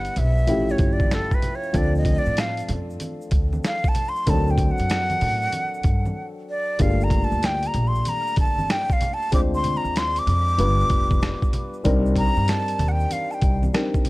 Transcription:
Already playing: G3 B3 D4 E4 B4 F#5
0.05 closed hi-hat, shaker
0.16 B1 E5, closed hi-hat, low conga, shaker
0.37 shaker
0.47 A1 F3 A3 C#4 E4 G4, closed hi-hat, high conga, shaker
0.69 C#5, shaker
0.78 G1, kick, closed hi-hat, shaker
0.93 D5
1.00 kick, high conga, shaker
1.11 A4, snare, closed hi-hat, shaker
1.31 B4, kick, shaker
1.42 closed hi-hat, low conga, shaker
1.55 C#5
1.63 shaker
1.73 D2 F3 A3 C4 D4 A4, kick, closed hi-hat, shaker
1.77 D5
1.95 D#5, shaker
2.05 kick, closed hi-hat, low conga, shaker
2.19 D5
2.26 A2, shaker
2.37 F5, snare, closed hi-hat, shaker
2.57 closed hi-hat, shaker
2.69 F2, closed hi-hat, low conga, shaker
2.90 shaker
3.00 closed hi-hat, high conga, shaker
3.21 shaker
3.31 D2, kick, closed hi-hat, shaker
3.53 high conga, shaker
3.64 F5, snare, closed hi-hat, shaker
3.84 kick, shaker
3.88 A5
3.95 closed hi-hat, low conga, shaker
4.09 C6
4.16 shaker
4.26 D2 D#3 C4 D4 A4 A#4 A5, kick, closed hi-hat, shaker
4.33 F#3
4.47 G5, shaker
4.58 kick, closed hi-hat, low conga, shaker
4.71 F#5
4.78 F#2, closed hi-hat, shaker
4.89 snare, closed hi-hat, shaker
5.10 closed hi-hat, high conga, shaker
5.21 A2, open hi-hat, low conga, shaker
5.42 shaker
5.52 closed hi-hat, high conga, shaker
5.74 shaker
5.83 G2, kick, closed hi-hat, shaker
6.06 high conga, shaker
6.50 D5
6.79 G1 G3 A#3 D4 F4 G#4 F5, kick, closed hi-hat, shaker
6.87 A3
7.01 A#5, shaker
7.10 kick, closed hi-hat, low conga, shaker
7.24 A5
7.32 D2, shaker
7.43 G5, snare, closed hi-hat, shaker
7.63 closed hi-hat, shaker
7.67 A#5
7.74 A#1, closed hi-hat, low conga, shaker
7.88 C6
7.95 shaker
8.05 A#5, closed hi-hat, high conga, shaker
8.27 shaker
8.36 G1 A5, kick, closed hi-hat, shaker
8.58 high conga, shaker
8.69 G5, snare, closed hi-hat, shaker
8.90 F5, kick, shaker
9.01 closed hi-hat, low conga, shaker
9.14 A5
9.22 shaker
9.32 D2 G#3 C4 D4 F4 C5 D6, kick, closed hi-hat, shaker
9.54 C6, shaker
9.64 closed hi-hat, low conga, shaker
9.77 A#5
9.84 D#2, shaker
9.96 C6, snare, closed hi-hat, shaker
10.16 D6, closed hi-hat, shaker
10.27 F2, closed hi-hat, low conga, shaker
10.48 shaker
10.58 G1 G3 B3 D4 F4 B4, closed hi-hat, high conga, shaker
10.80 shaker
10.90 F1, kick, closed hi-hat, shaker
11.11 kick, high conga, shaker
11.22 snare, closed hi-hat, shaker
11.42 kick, shaker
11.53 closed hi-hat, low conga, shaker
11.74 shaker
11.84 C2 G3 C4 D4 D#4 A#4, kick, closed hi-hat, shaker
12.06 shaker
12.16 A#5, kick, closed hi-hat, low conga, shaker
12.36 G2, shaker
12.48 A5, snare, closed hi-hat, shaker
12.68 closed hi-hat, shaker
12.79 D#2, closed hi-hat, low conga, shaker
12.88 F#5 G5
13.00 shaker
13.11 F5, closed hi-hat, high conga, shaker
13.31 G5 A5, shaker
13.42 C2, kick, closed hi-hat, shaker
13.63 high conga, shaker
13.73 G3 C4 D4 D#4 A#4, snare, closed hi-hat, shaker
13.94 kick, shaker
14.05 closed hi-hat, low conga, shaker

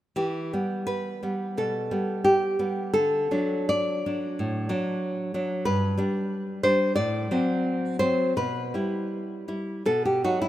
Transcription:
0.16 E3 G4
0.53 G3 B3
0.87 B4
1.23 G3 B3
1.57 B2 A4
1.91 G3 B3
2.24 G4
2.59 G3 B3
2.94 D3 A4
3.31 F#3 D4
3.69 D5
4.06 F#3 D4
4.39 A2
4.69 F#3 D4
5.34 F#3 D4
5.65 G2 B4
5.98 G3 D4
6.63 G3 D4 C5
6.96 A2 D5
7.31 F#3 C4
7.99 F#3 C4 C5
8.37 B2 B4
8.74 G3 E4
9.48 G3 E4
9.86 B2 A4
10.05 G4
10.24 F#3 D#4 F#4
10.42 E4

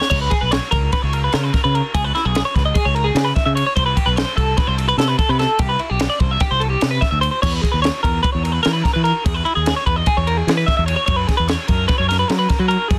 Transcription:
0.00 C#5, snare
0.10 C#2 C#5, kick, crash
0.21 B4
0.30 G#4, kick, ride
0.41 B1 B4
0.51 C#5, snare, ride
0.71 C#2 A#4, kick, ride
0.92 B4, kick, snare, ride
1.02 C#2 C#5
1.13 A#4, ride
1.24 B4
1.32 C#3 A#4, snare, ride
1.44 B4
1.53 A#4, kick, snare, ride
1.64 C#3 B4
1.75 A#4, ride
1.94 C#2 G#4, kick, ride
2.04 B4
2.15 E4, snare, ride
2.25 B1 G#4
2.35 snare, ride
2.45 C#5
2.55 C#2 B4, kick, snare, ride
2.65 D#5
2.74 G#4, kick, ride
2.85 C#2 C#5
2.95 A#4, ride
3.04 G#4
3.15 C#3, snare, ride
3.25 B4
3.36 E5, kick, snare, ride
3.46 C#3 E5
3.55 C#5, ride
3.66 C#5
3.76 C2 C5, kick, ride
3.86 B4
3.96 G4, kick, ride
4.06 B1 B4
4.16 C5, snare, ride
4.37 C2 A4, kick, ride
4.57 B4, kick, snare, ride
4.67 C2 C5
4.78 A4, ride
4.89 B4
4.98 C3 A4, snare, ride
5.08 B4
5.19 A4, kick, ride
5.29 C3 B4
5.39 A4, snare, ride
5.59 C2 G4, kick, ride
5.69 B4
5.79 E4, ride
5.90 B1 G4
5.99 snare, ride
6.10 D5
6.20 C2 C5, kick, ride
6.31 E5
6.40 G4, kick, snare, ride
6.51 C2 C5
6.60 A4, ride
6.70 G4
6.81 C3, snare, ride
6.91 B4
7.01 E5, kick, snare, ride
7.11 D2 E5
7.21 C5, ride
7.31 C5
7.42 E2 C#5, kick, crash
7.51 B4
7.62 G#4, kick, ride
7.72 D#2 B4
7.82 C#5, snare, ride
8.03 E2 A#4, kick, ride
8.23 B4, kick, ride
8.32 E2 C#5
8.44 A#4, ride
8.52 B4
8.63 E3 A#4, snare, ride
8.73 B4
8.84 A#4, kick, snare, ride
8.94 E3 B4
9.04 A#4, ride
9.24 E2 G#4, kick, ride
9.34 B4
9.45 E4, ride
9.55 D#2 G#4
9.66 snare, ride
9.76 C#5
9.86 E2 B4, kick, ride
9.96 D#5
10.06 G#4, kick, ride
10.17 E2 C#5
10.27 A#4, ride
10.38 G#4
10.47 E3, snare, ride
10.57 B4
10.66 E5, kick, snare, ride
10.77 E2 E5
10.86 C#5, ride
10.96 C#5
11.06 F#2 C#5, kick, ride
11.16 B4
11.28 G#4, kick, snare, ride
11.37 E2 B4
11.48 C#5, snare, ride
11.68 F#2 A#4, kick, ride
11.88 B4, kick, snare, ride
11.98 F#2 C#5
12.09 A#4, snare, ride
12.19 B4
12.28 F#3 A#4, snare, ride
12.39 B4
12.49 A#4, kick, snare, ride
12.59 F#3 B4
12.68 A#4, ride
12.88 F#2 G#4, kick, ride

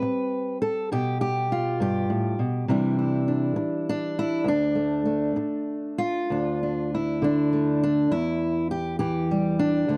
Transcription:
Already playing: G3 C4 B4
0.02 muted steel-string acoustic guitar stroke
0.62 A4
0.92 B2 G4
1.21 G4
1.52 F4
1.80 G2 G4
2.10 A2
2.39 B2
2.68 C3 E3 G3 D4 E4
2.99 E4
3.28 D4
3.56 muted steel-string acoustic guitar stroke
3.89 D4
4.19 E4
4.44 D2 D4
4.75 A3
5.05 A3
5.36 muted steel-string acoustic guitar stroke
5.98 F4
6.30 D2 D4
6.63 D4
6.95 E4
7.22 D3 D4
7.53 A3
7.83 D4
8.11 E2 E4
8.71 G4
8.99 E3 G4
9.31 G3
9.59 D4
9.88 D2 D3 A3

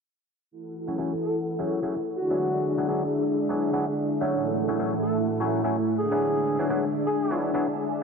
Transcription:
0.51 E4 A4 F#5
0.87 F#3 A3 C#4 E4 G#4
0.98 F#3 A3 C#4 E4 G#4
1.22 A4
1.59 F#3 A3 C#4 E4 G#4
1.83 F#3 A3 C#4 E4 G#4
2.17 D4 F#4 G#4 E5
2.30 F#3 B3 D4 E4 G#4
2.78 F#3 B3 D4 E4 G#4
2.88 F#3 B3 D4 E4 G#4
3.49 F#3 B3 D4 E4 G#4
3.73 F#3 B3 D4 E4 G#4
4.21 F#3 A3 C#4 E4 G#4
4.32 A3 E4 F#5
4.68 F#3 A3 C#4 E4 G#4
4.79 F#3 A3 C#4 E4 G#4
5.03 A4
5.40 F#3 A3 C#4 E4 G#4
5.64 F#3 A3 C#4 E4 G#4
5.99 D4 G#4 E5
6.11 F#3 B3 D4 E4 G#4
6.59 F#3 B3 D4 E4 G#4
6.69 F#3 B3 D4 E4 G#4
7.07 G#4
7.30 F#3 B3 D4 E4 G#4
7.54 F#3 B3 D4 E4 G#4

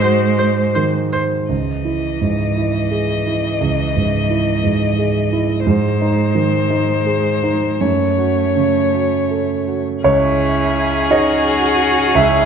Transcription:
Already playing: G#2 G#3 C5
0.01 F#4 C5
0.39 C5
0.75 D#3 C5
1.13 C5
1.48 C#2 E3 D#5
1.85 E4
2.21 G#2
2.57 E4
2.91 G#4
3.27 E4
3.61 C#2
3.96 G#2
4.30 E4
4.64 G#2
4.99 G#4
5.33 E4
5.66 G#2 G#3 C5
6.02 D#4
6.35 D#3
6.70 D#4
7.06 G#4
7.43 D#4
7.80 F#2 A3 C#5
8.18 F#4
8.56 C#3
8.94 F#4
9.31 A4
9.67 F#4
10.04 C#2 C#4 E4 G#4 C#5
11.11 D#4 F#4 G#4 C#5 D#5
12.15 C#2 E4 E5

